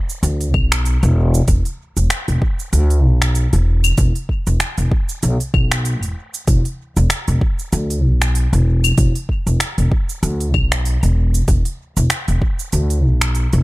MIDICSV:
0, 0, Header, 1, 3, 480
1, 0, Start_track
1, 0, Tempo, 625000
1, 1134, Time_signature, 4, 2, 24, 8
1, 10469, End_track
2, 0, Start_track
2, 0, Title_t, "Upright bass"
2, 0, Program_c, 0, 32
2, 174, Note_on_c, 0, 38, 104
2, 415, Note_off_c, 0, 38, 0
2, 415, Note_on_c, 0, 35, 98
2, 731, Note_off_c, 0, 35, 0
2, 790, Note_on_c, 0, 28, 101
2, 1088, Note_off_c, 0, 28, 0
2, 1136, Note_on_c, 0, 28, 100
2, 1234, Note_off_c, 0, 28, 0
2, 1510, Note_on_c, 0, 28, 89
2, 1585, Note_off_c, 0, 28, 0
2, 1752, Note_on_c, 0, 28, 85
2, 1826, Note_off_c, 0, 28, 0
2, 2094, Note_on_c, 0, 38, 100
2, 2336, Note_off_c, 0, 38, 0
2, 2336, Note_on_c, 0, 35, 94
2, 2651, Note_off_c, 0, 35, 0
2, 2711, Note_on_c, 0, 28, 92
2, 3009, Note_off_c, 0, 28, 0
2, 3055, Note_on_c, 0, 28, 102
2, 3153, Note_off_c, 0, 28, 0
2, 3432, Note_on_c, 0, 28, 94
2, 3506, Note_off_c, 0, 28, 0
2, 3670, Note_on_c, 0, 28, 82
2, 3745, Note_off_c, 0, 28, 0
2, 4016, Note_on_c, 0, 35, 99
2, 4113, Note_off_c, 0, 35, 0
2, 4253, Note_on_c, 0, 35, 83
2, 4630, Note_off_c, 0, 35, 0
2, 4630, Note_on_c, 0, 28, 82
2, 4705, Note_off_c, 0, 28, 0
2, 4974, Note_on_c, 0, 28, 97
2, 5072, Note_off_c, 0, 28, 0
2, 5350, Note_on_c, 0, 28, 91
2, 5425, Note_off_c, 0, 28, 0
2, 5590, Note_on_c, 0, 28, 84
2, 5665, Note_off_c, 0, 28, 0
2, 5934, Note_on_c, 0, 38, 97
2, 6172, Note_off_c, 0, 38, 0
2, 6172, Note_on_c, 0, 35, 96
2, 6489, Note_off_c, 0, 35, 0
2, 6549, Note_on_c, 0, 28, 93
2, 6847, Note_off_c, 0, 28, 0
2, 6895, Note_on_c, 0, 28, 95
2, 6993, Note_off_c, 0, 28, 0
2, 7269, Note_on_c, 0, 28, 88
2, 7345, Note_off_c, 0, 28, 0
2, 7511, Note_on_c, 0, 28, 82
2, 7585, Note_off_c, 0, 28, 0
2, 7854, Note_on_c, 0, 38, 102
2, 8095, Note_off_c, 0, 38, 0
2, 8095, Note_on_c, 0, 35, 92
2, 8411, Note_off_c, 0, 35, 0
2, 8470, Note_on_c, 0, 28, 95
2, 8768, Note_off_c, 0, 28, 0
2, 8817, Note_on_c, 0, 28, 102
2, 8914, Note_off_c, 0, 28, 0
2, 9191, Note_on_c, 0, 28, 90
2, 9266, Note_off_c, 0, 28, 0
2, 9432, Note_on_c, 0, 28, 80
2, 9506, Note_off_c, 0, 28, 0
2, 9776, Note_on_c, 0, 38, 100
2, 10016, Note_off_c, 0, 38, 0
2, 10016, Note_on_c, 0, 35, 99
2, 10331, Note_off_c, 0, 35, 0
2, 10392, Note_on_c, 0, 28, 98
2, 10469, Note_off_c, 0, 28, 0
2, 10469, End_track
3, 0, Start_track
3, 0, Title_t, "Drums"
3, 73, Note_on_c, 9, 82, 72
3, 150, Note_off_c, 9, 82, 0
3, 176, Note_on_c, 9, 46, 66
3, 178, Note_on_c, 9, 82, 55
3, 253, Note_off_c, 9, 46, 0
3, 255, Note_off_c, 9, 82, 0
3, 312, Note_on_c, 9, 46, 45
3, 314, Note_on_c, 9, 82, 38
3, 389, Note_off_c, 9, 46, 0
3, 391, Note_off_c, 9, 82, 0
3, 415, Note_on_c, 9, 75, 56
3, 416, Note_on_c, 9, 36, 108
3, 492, Note_off_c, 9, 36, 0
3, 492, Note_off_c, 9, 75, 0
3, 552, Note_on_c, 9, 26, 83
3, 552, Note_on_c, 9, 46, 29
3, 554, Note_on_c, 9, 82, 69
3, 629, Note_off_c, 9, 26, 0
3, 629, Note_off_c, 9, 46, 0
3, 631, Note_off_c, 9, 82, 0
3, 656, Note_on_c, 9, 46, 60
3, 658, Note_on_c, 9, 82, 55
3, 733, Note_off_c, 9, 46, 0
3, 735, Note_off_c, 9, 82, 0
3, 790, Note_on_c, 9, 46, 43
3, 792, Note_on_c, 9, 82, 33
3, 867, Note_off_c, 9, 46, 0
3, 868, Note_off_c, 9, 82, 0
3, 1030, Note_on_c, 9, 46, 33
3, 1032, Note_on_c, 9, 82, 72
3, 1107, Note_off_c, 9, 46, 0
3, 1108, Note_off_c, 9, 82, 0
3, 1134, Note_on_c, 9, 46, 70
3, 1136, Note_on_c, 9, 36, 117
3, 1136, Note_on_c, 9, 82, 60
3, 1211, Note_off_c, 9, 46, 0
3, 1213, Note_off_c, 9, 36, 0
3, 1213, Note_off_c, 9, 82, 0
3, 1270, Note_on_c, 9, 46, 41
3, 1272, Note_on_c, 9, 82, 32
3, 1347, Note_off_c, 9, 46, 0
3, 1349, Note_off_c, 9, 82, 0
3, 1510, Note_on_c, 9, 46, 30
3, 1511, Note_on_c, 9, 82, 70
3, 1586, Note_off_c, 9, 46, 0
3, 1588, Note_off_c, 9, 82, 0
3, 1614, Note_on_c, 9, 26, 80
3, 1614, Note_on_c, 9, 46, 64
3, 1616, Note_on_c, 9, 82, 56
3, 1691, Note_off_c, 9, 26, 0
3, 1691, Note_off_c, 9, 46, 0
3, 1693, Note_off_c, 9, 82, 0
3, 1751, Note_on_c, 9, 46, 41
3, 1753, Note_on_c, 9, 82, 35
3, 1828, Note_off_c, 9, 46, 0
3, 1830, Note_off_c, 9, 82, 0
3, 1856, Note_on_c, 9, 36, 110
3, 1933, Note_off_c, 9, 36, 0
3, 1993, Note_on_c, 9, 82, 72
3, 2069, Note_off_c, 9, 82, 0
3, 2095, Note_on_c, 9, 46, 67
3, 2096, Note_on_c, 9, 82, 62
3, 2172, Note_off_c, 9, 46, 0
3, 2173, Note_off_c, 9, 82, 0
3, 2230, Note_on_c, 9, 46, 45
3, 2232, Note_on_c, 9, 82, 37
3, 2307, Note_off_c, 9, 46, 0
3, 2309, Note_off_c, 9, 82, 0
3, 2470, Note_on_c, 9, 26, 73
3, 2470, Note_on_c, 9, 46, 30
3, 2472, Note_on_c, 9, 82, 63
3, 2547, Note_off_c, 9, 26, 0
3, 2547, Note_off_c, 9, 46, 0
3, 2549, Note_off_c, 9, 82, 0
3, 2573, Note_on_c, 9, 46, 60
3, 2575, Note_on_c, 9, 82, 58
3, 2650, Note_off_c, 9, 46, 0
3, 2652, Note_off_c, 9, 82, 0
3, 2710, Note_on_c, 9, 46, 43
3, 2711, Note_on_c, 9, 82, 35
3, 2786, Note_off_c, 9, 46, 0
3, 2788, Note_off_c, 9, 82, 0
3, 2949, Note_on_c, 9, 46, 31
3, 2949, Note_on_c, 9, 75, 75
3, 2950, Note_on_c, 9, 82, 72
3, 3025, Note_off_c, 9, 46, 0
3, 3025, Note_off_c, 9, 75, 0
3, 3027, Note_off_c, 9, 82, 0
3, 3053, Note_on_c, 9, 46, 69
3, 3055, Note_on_c, 9, 36, 120
3, 3055, Note_on_c, 9, 82, 63
3, 3130, Note_off_c, 9, 46, 0
3, 3132, Note_off_c, 9, 36, 0
3, 3132, Note_off_c, 9, 82, 0
3, 3190, Note_on_c, 9, 46, 42
3, 3192, Note_on_c, 9, 82, 32
3, 3267, Note_off_c, 9, 46, 0
3, 3269, Note_off_c, 9, 82, 0
3, 3295, Note_on_c, 9, 36, 59
3, 3372, Note_off_c, 9, 36, 0
3, 3430, Note_on_c, 9, 46, 30
3, 3432, Note_on_c, 9, 82, 68
3, 3507, Note_off_c, 9, 46, 0
3, 3509, Note_off_c, 9, 82, 0
3, 3533, Note_on_c, 9, 26, 74
3, 3533, Note_on_c, 9, 46, 59
3, 3535, Note_on_c, 9, 82, 58
3, 3610, Note_off_c, 9, 26, 0
3, 3610, Note_off_c, 9, 46, 0
3, 3612, Note_off_c, 9, 82, 0
3, 3668, Note_on_c, 9, 46, 40
3, 3669, Note_on_c, 9, 82, 37
3, 3744, Note_off_c, 9, 46, 0
3, 3746, Note_off_c, 9, 82, 0
3, 3774, Note_on_c, 9, 36, 110
3, 3851, Note_off_c, 9, 36, 0
3, 3909, Note_on_c, 9, 82, 70
3, 3986, Note_off_c, 9, 82, 0
3, 4013, Note_on_c, 9, 46, 63
3, 4015, Note_on_c, 9, 82, 57
3, 4090, Note_off_c, 9, 46, 0
3, 4092, Note_off_c, 9, 82, 0
3, 4150, Note_on_c, 9, 46, 42
3, 4151, Note_on_c, 9, 82, 35
3, 4226, Note_off_c, 9, 46, 0
3, 4228, Note_off_c, 9, 82, 0
3, 4254, Note_on_c, 9, 36, 110
3, 4254, Note_on_c, 9, 75, 59
3, 4331, Note_off_c, 9, 36, 0
3, 4331, Note_off_c, 9, 75, 0
3, 4389, Note_on_c, 9, 26, 69
3, 4389, Note_on_c, 9, 46, 28
3, 4391, Note_on_c, 9, 82, 66
3, 4466, Note_off_c, 9, 26, 0
3, 4466, Note_off_c, 9, 46, 0
3, 4468, Note_off_c, 9, 82, 0
3, 4493, Note_on_c, 9, 46, 58
3, 4495, Note_on_c, 9, 82, 57
3, 4570, Note_off_c, 9, 46, 0
3, 4572, Note_off_c, 9, 82, 0
3, 4628, Note_on_c, 9, 46, 40
3, 4630, Note_on_c, 9, 82, 34
3, 4705, Note_off_c, 9, 46, 0
3, 4707, Note_off_c, 9, 82, 0
3, 4868, Note_on_c, 9, 46, 31
3, 4870, Note_on_c, 9, 82, 69
3, 4945, Note_off_c, 9, 46, 0
3, 4947, Note_off_c, 9, 82, 0
3, 4973, Note_on_c, 9, 36, 121
3, 4973, Note_on_c, 9, 46, 67
3, 4975, Note_on_c, 9, 82, 61
3, 5050, Note_off_c, 9, 36, 0
3, 5050, Note_off_c, 9, 46, 0
3, 5051, Note_off_c, 9, 82, 0
3, 5109, Note_on_c, 9, 46, 43
3, 5111, Note_on_c, 9, 82, 32
3, 5186, Note_off_c, 9, 46, 0
3, 5188, Note_off_c, 9, 82, 0
3, 5348, Note_on_c, 9, 46, 28
3, 5350, Note_on_c, 9, 82, 66
3, 5425, Note_off_c, 9, 46, 0
3, 5427, Note_off_c, 9, 82, 0
3, 5452, Note_on_c, 9, 26, 71
3, 5452, Note_on_c, 9, 46, 60
3, 5454, Note_on_c, 9, 82, 56
3, 5529, Note_off_c, 9, 26, 0
3, 5529, Note_off_c, 9, 46, 0
3, 5531, Note_off_c, 9, 82, 0
3, 5588, Note_on_c, 9, 46, 40
3, 5590, Note_on_c, 9, 82, 34
3, 5665, Note_off_c, 9, 46, 0
3, 5667, Note_off_c, 9, 82, 0
3, 5693, Note_on_c, 9, 36, 108
3, 5770, Note_off_c, 9, 36, 0
3, 5830, Note_on_c, 9, 82, 65
3, 5907, Note_off_c, 9, 82, 0
3, 5932, Note_on_c, 9, 46, 62
3, 5934, Note_on_c, 9, 82, 56
3, 6009, Note_off_c, 9, 46, 0
3, 6011, Note_off_c, 9, 82, 0
3, 6070, Note_on_c, 9, 46, 42
3, 6072, Note_on_c, 9, 82, 34
3, 6147, Note_off_c, 9, 46, 0
3, 6148, Note_off_c, 9, 82, 0
3, 6310, Note_on_c, 9, 26, 75
3, 6310, Note_on_c, 9, 46, 29
3, 6311, Note_on_c, 9, 82, 65
3, 6386, Note_off_c, 9, 26, 0
3, 6386, Note_off_c, 9, 46, 0
3, 6388, Note_off_c, 9, 82, 0
3, 6414, Note_on_c, 9, 46, 61
3, 6415, Note_on_c, 9, 82, 49
3, 6490, Note_off_c, 9, 46, 0
3, 6492, Note_off_c, 9, 82, 0
3, 6551, Note_on_c, 9, 46, 43
3, 6553, Note_on_c, 9, 82, 31
3, 6628, Note_off_c, 9, 46, 0
3, 6629, Note_off_c, 9, 82, 0
3, 6790, Note_on_c, 9, 46, 31
3, 6790, Note_on_c, 9, 75, 80
3, 6791, Note_on_c, 9, 82, 70
3, 6866, Note_off_c, 9, 46, 0
3, 6866, Note_off_c, 9, 75, 0
3, 6868, Note_off_c, 9, 82, 0
3, 6893, Note_on_c, 9, 46, 68
3, 6895, Note_on_c, 9, 36, 112
3, 6895, Note_on_c, 9, 82, 55
3, 6970, Note_off_c, 9, 46, 0
3, 6971, Note_off_c, 9, 36, 0
3, 6972, Note_off_c, 9, 82, 0
3, 7031, Note_on_c, 9, 46, 42
3, 7032, Note_on_c, 9, 82, 31
3, 7107, Note_off_c, 9, 46, 0
3, 7109, Note_off_c, 9, 82, 0
3, 7134, Note_on_c, 9, 36, 61
3, 7211, Note_off_c, 9, 36, 0
3, 7271, Note_on_c, 9, 46, 31
3, 7273, Note_on_c, 9, 82, 67
3, 7348, Note_off_c, 9, 46, 0
3, 7350, Note_off_c, 9, 82, 0
3, 7374, Note_on_c, 9, 26, 74
3, 7374, Note_on_c, 9, 46, 68
3, 7376, Note_on_c, 9, 82, 51
3, 7451, Note_off_c, 9, 26, 0
3, 7451, Note_off_c, 9, 46, 0
3, 7453, Note_off_c, 9, 82, 0
3, 7511, Note_on_c, 9, 46, 45
3, 7513, Note_on_c, 9, 82, 34
3, 7588, Note_off_c, 9, 46, 0
3, 7589, Note_off_c, 9, 82, 0
3, 7615, Note_on_c, 9, 36, 103
3, 7692, Note_off_c, 9, 36, 0
3, 7752, Note_on_c, 9, 82, 65
3, 7828, Note_off_c, 9, 82, 0
3, 7855, Note_on_c, 9, 46, 66
3, 7857, Note_on_c, 9, 82, 56
3, 7932, Note_off_c, 9, 46, 0
3, 7934, Note_off_c, 9, 82, 0
3, 7991, Note_on_c, 9, 46, 43
3, 7993, Note_on_c, 9, 82, 33
3, 8068, Note_off_c, 9, 46, 0
3, 8069, Note_off_c, 9, 82, 0
3, 8095, Note_on_c, 9, 75, 65
3, 8096, Note_on_c, 9, 36, 98
3, 8172, Note_off_c, 9, 75, 0
3, 8173, Note_off_c, 9, 36, 0
3, 8232, Note_on_c, 9, 26, 72
3, 8232, Note_on_c, 9, 46, 28
3, 8234, Note_on_c, 9, 82, 59
3, 8309, Note_off_c, 9, 26, 0
3, 8309, Note_off_c, 9, 46, 0
3, 8310, Note_off_c, 9, 82, 0
3, 8336, Note_on_c, 9, 46, 62
3, 8338, Note_on_c, 9, 82, 49
3, 8413, Note_off_c, 9, 46, 0
3, 8414, Note_off_c, 9, 82, 0
3, 8470, Note_on_c, 9, 46, 42
3, 8472, Note_on_c, 9, 82, 31
3, 8547, Note_off_c, 9, 46, 0
3, 8548, Note_off_c, 9, 82, 0
3, 8711, Note_on_c, 9, 46, 31
3, 8712, Note_on_c, 9, 82, 70
3, 8788, Note_off_c, 9, 46, 0
3, 8789, Note_off_c, 9, 82, 0
3, 8816, Note_on_c, 9, 36, 118
3, 8816, Note_on_c, 9, 46, 77
3, 8818, Note_on_c, 9, 82, 57
3, 8893, Note_off_c, 9, 36, 0
3, 8893, Note_off_c, 9, 46, 0
3, 8894, Note_off_c, 9, 82, 0
3, 8950, Note_on_c, 9, 46, 48
3, 8952, Note_on_c, 9, 82, 30
3, 9027, Note_off_c, 9, 46, 0
3, 9028, Note_off_c, 9, 82, 0
3, 9190, Note_on_c, 9, 46, 32
3, 9192, Note_on_c, 9, 82, 63
3, 9267, Note_off_c, 9, 46, 0
3, 9269, Note_off_c, 9, 82, 0
3, 9293, Note_on_c, 9, 26, 75
3, 9293, Note_on_c, 9, 46, 65
3, 9295, Note_on_c, 9, 82, 50
3, 9370, Note_off_c, 9, 26, 0
3, 9370, Note_off_c, 9, 46, 0
3, 9371, Note_off_c, 9, 82, 0
3, 9431, Note_on_c, 9, 46, 44
3, 9432, Note_on_c, 9, 82, 32
3, 9507, Note_off_c, 9, 46, 0
3, 9509, Note_off_c, 9, 82, 0
3, 9535, Note_on_c, 9, 36, 104
3, 9612, Note_off_c, 9, 36, 0
3, 9671, Note_on_c, 9, 82, 66
3, 9748, Note_off_c, 9, 82, 0
3, 9772, Note_on_c, 9, 46, 68
3, 9774, Note_on_c, 9, 82, 55
3, 9849, Note_off_c, 9, 46, 0
3, 9851, Note_off_c, 9, 82, 0
3, 9909, Note_on_c, 9, 46, 47
3, 9911, Note_on_c, 9, 82, 34
3, 9986, Note_off_c, 9, 46, 0
3, 9988, Note_off_c, 9, 82, 0
3, 10149, Note_on_c, 9, 26, 78
3, 10149, Note_on_c, 9, 46, 33
3, 10150, Note_on_c, 9, 82, 61
3, 10225, Note_off_c, 9, 26, 0
3, 10225, Note_off_c, 9, 46, 0
3, 10227, Note_off_c, 9, 82, 0
3, 10251, Note_on_c, 9, 46, 61
3, 10252, Note_on_c, 9, 82, 49
3, 10328, Note_off_c, 9, 46, 0
3, 10329, Note_off_c, 9, 82, 0
3, 10388, Note_on_c, 9, 46, 46
3, 10390, Note_on_c, 9, 82, 32
3, 10465, Note_off_c, 9, 46, 0
3, 10467, Note_off_c, 9, 82, 0
3, 10469, End_track
0, 0, End_of_file